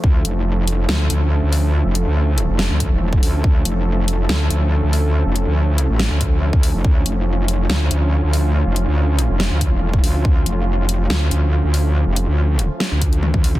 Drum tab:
HH |--x---x---x---o-|--x---x---x---o-|--x---x---x---o-|--x---x---x---o-|
SD |--------o-------|--------o-------|--------o-------|--------o-------|
T1 |----------------|----------------|----------------|----------------|
T2 |----------------|----------------|----------------|----------------|
BD |o---------------|----------o--o--|o---------------|----------o--o--|

HH |--x---x---x---o-|--x---x---x---o-|--x---x---x---o-|--x---x---xx--o-|
SD |--------o-------|--------o-------|--------o-------|--------o-------|
T1 |----------------|----------------|----------------|------------oo--|
T2 |----------------|----------------|----------------|---------------o|
BD |o---------------|----------o--o--|o---------------|----------o--o--|